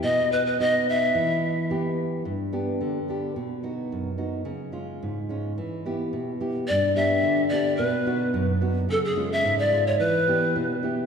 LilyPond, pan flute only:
\new Staff \with { instrumentName = "Pan flute" } { \time 2/4 \key e \dorian \tempo 4 = 108 dis''8 b'16 b'16 dis''8 e''8~ | e''4 r4 | r2 | r2 |
r2 | r2 | d''8 e''4 d''8 | b'4. r8 |
a'16 gis'8 e''8 d''8 cis''16 | b'4. r8 | }